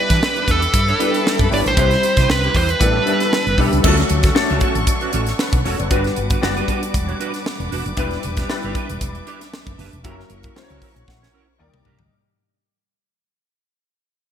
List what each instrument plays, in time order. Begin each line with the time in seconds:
Already playing: grand piano G3 B3 D4 E4 B4, string section G4 E5 B5 D6
0.00 lead electric guitar B4
0.10 fretless electric bass E3, clean electric guitar D4 G4 B4, kick, snare, closed hi-hat
0.23 snare
0.36 clean electric guitar D4 G4 B4, closed hi-hat
0.48 fretless electric bass E2, clean electric guitar D4 G4 B4, lead electric guitar A4, kick, closed hi-hat
0.62 muted clean electric guitar stroke, closed hi-hat
0.74 fretless electric bass G2, muted clean electric guitar stroke, kick, closed hi-hat
0.88 clean electric guitar D4 G4 C#5, closed hi-hat
0.99 grand piano G3 B3 D4 E4 B4, clean electric guitar D4 G4 B4, closed hi-hat
1.14 muted clean electric guitar stroke, closed hi-hat
1.27 snare
1.39 fretless electric bass F#2, muted clean electric guitar stroke, kick, closed hi-hat
1.50 fretless electric bass G1, grand piano G3 B3 D4 E4 C#5, clean electric guitar D4 G4 B4, lead electric guitar D5, open hi-hat
1.66 fretless electric bass A1, lead electric guitar C5, muted clean electric guitar stroke, closed hi-hat
1.76 fretless electric bass C2, grand piano G3 C4 E4 C5, clean electric guitar E4 G4 B4, string section C6, kick, closed hi-hat
1.91 muted clean electric guitar stroke, snare, closed hi-hat
2.03 muted clean electric guitar stroke, closed hi-hat
2.17 fretless electric bass C3, clean electric guitar E4 G4 B4, kick, snare, closed hi-hat
2.30 fretless electric bass C2, lead electric guitar B4, snare
2.44 clean electric guitar E4 G4 B4, closed hi-hat
2.55 fretless electric bass E2, clean electric guitar E4 G4 B4, lead electric guitar C5, kick, open hi-hat
2.69 lead electric guitar B4, muted clean electric guitar stroke, closed hi-hat
2.79 fretless electric bass A1, grand piano G3 B3 D4 E4 A4, string section D5 A5, muted clean electric guitar stroke, kick, closed hi-hat
2.95 clean electric guitar D4 G4 C#5
3.05 grand piano G3 B3 D4 E4 A4, clean electric guitar D4 G4 B4, closed hi-hat
3.20 muted clean electric guitar stroke, snare, closed hi-hat
3.33 snare
3.46 fretless electric bass G1, muted clean electric guitar stroke, closed hi-hat
3.57 fretless electric bass B1, grand piano G3 B3 D4 E4 A4, clean electric guitar D4 G4 B4, kick, open hi-hat
3.73 fretless electric bass C#2, muted clean electric guitar stroke, closed hi-hat
3.83 fretless electric bass D2, grand piano F3 A3 C#4 D4 A4, clean electric guitar C#4 F#4 A4, string section A4 C#5 F#5 C#6, kick, crash
3.89 grand piano F#3
3.97 muted clean electric guitar stroke, snare, closed hi-hat
4.09 fretless electric bass D2, muted clean electric guitar stroke, closed hi-hat
4.23 clean electric guitar C#4 F#4 A4, kick, snare, closed hi-hat
4.34 grand piano F#3 A3 C#4 D4 A4, muted clean electric guitar stroke, snare
4.50 fretless electric bass C#2, clean electric guitar C#4 F#4 A4, closed hi-hat
4.61 clean electric guitar C#4 F#4 A4, kick, closed hi-hat
4.75 fretless electric bass A1, closed hi-hat
4.87 muted clean electric guitar stroke, kick, closed hi-hat
5.01 clean electric guitar C#4 F#4 B4, closed hi-hat
5.13 fretless electric bass A1, clean electric guitar C#4 F#4 A4, closed hi-hat
5.26 muted clean electric guitar stroke, snare, closed hi-hat
5.39 grand piano B4, snare
5.53 fretless electric bass B1, muted clean electric guitar stroke, kick, closed hi-hat
5.65 fretless electric bass E1, clean electric guitar C#4 F#4 A4, grand piano A4 C#5, open hi-hat
5.78 fretless electric bass F#1, grand piano B4 D5, muted clean electric guitar stroke, closed hi-hat
5.90 fretless electric bass G1, grand piano G3 B3 D4 F#4 B4, clean electric guitar D4 F#4 B4, string section B4 D5 D6, kick, closed hi-hat
6.04 muted clean electric guitar stroke, snare, closed hi-hat
6.16 fretless electric bass G1, muted clean electric guitar stroke, closed hi-hat
6.30 clean electric guitar D4 F#4 B4, kick, closed hi-hat
6.41 fretless electric bass F#1, grand piano G3 B3 D4 F#4 D5, muted clean electric guitar stroke, snare
6.57 clean electric guitar D4 F#4 B4, closed hi-hat
6.68 clean electric guitar D4 F#4 B4, kick, closed hi-hat
6.82 muted clean electric guitar stroke, closed hi-hat
6.94 fretless electric bass E1, muted clean electric guitar stroke, kick, closed hi-hat
7.08 clean electric guitar D4 F#4 C#5, closed hi-hat
7.20 clean electric guitar D4 F#4 B4, closed hi-hat
7.34 muted clean electric guitar stroke, snare, closed hi-hat
7.46 snare
7.60 fretless electric bass E1, muted clean electric guitar stroke, closed hi-hat
7.71 fretless electric bass E1, clean electric guitar D4 F#4 B4, open hi-hat
7.85 fretless electric bass F#1, muted clean electric guitar stroke, closed hi-hat
7.97 fretless electric bass E1, grand piano G3 B3 D4 E4 B4, clean electric guitar D4 G4 B4, string section E5, kick, closed hi-hat
8.11 muted clean electric guitar stroke, snare, closed hi-hat
8.23 fretless electric bass E1, muted clean electric guitar stroke, closed hi-hat
8.37 clean electric guitar D4 G4 B4, kick, snare, closed hi-hat
8.49 grand piano G3 B3 D4 E4 B4, muted clean electric guitar stroke, snare
8.63 fretless electric bass G1, clean electric guitar D4 G4 B4, closed hi-hat
8.75 clean electric guitar D4 G4 B4, kick, closed hi-hat
8.89 fretless electric bass E1, muted clean electric guitar stroke, closed hi-hat
9.01 fretless electric bass E1, kick, closed hi-hat
9.15 muted clean electric guitar stroke, closed hi-hat
9.26 clean electric guitar D4 G4 B4, closed hi-hat
9.41 muted clean electric guitar stroke, snare, closed hi-hat
9.54 snare
9.66 fretless electric bass F#1, muted clean electric guitar stroke, kick, closed hi-hat
9.78 fretless electric bass F#1, clean electric guitar D4 G4 B4, open hi-hat
9.93 fretless electric bass E1, muted clean electric guitar stroke, closed hi-hat
10.04 fretless electric bass F#1, grand piano F#3 A#3 C#4 E4 G4, clean electric guitar C#4 E4 A#4, string section A#4 F#5 C#6, kick, closed hi-hat
10.11 grand piano A#4
10.18 muted clean electric guitar stroke, snare
10.30 fretless electric bass F#1, muted clean electric guitar stroke, closed hi-hat
10.43 clean electric guitar C#4 E4 A#4, kick, closed hi-hat
10.55 grand piano F#3 A#3 C#4 E4 C5, muted clean electric guitar stroke, snare
10.63 grand piano C#5
10.70 fretless electric bass C#2, clean electric guitar C#4 E4 A#4, closed hi-hat
10.82 clean electric guitar C#4 E4 A#4, grand piano A#5, kick, open hi-hat
10.96 fretless electric bass A#1, muted clean electric guitar stroke, closed hi-hat
11.08 fretless electric bass A#1, grand piano F#5, muted clean electric guitar stroke, kick, snare
11.22 clean electric guitar C#4 E4 C#5, snare
11.34 clean electric guitar C#4 E4 A#4
11.48 muted clean electric guitar stroke
11.58 fretless electric bass D#2, grand piano G3 A#3 D#4 A#4 D5 D#5, string section D#4 G5 D6
11.74 fretless electric bass C2, muted clean electric guitar stroke, mid tom
11.85 fretless electric bass C2, clean electric guitar D4 G4 A#4, floor tom
11.99 fretless electric bass D2, muted clean electric guitar stroke, floor tom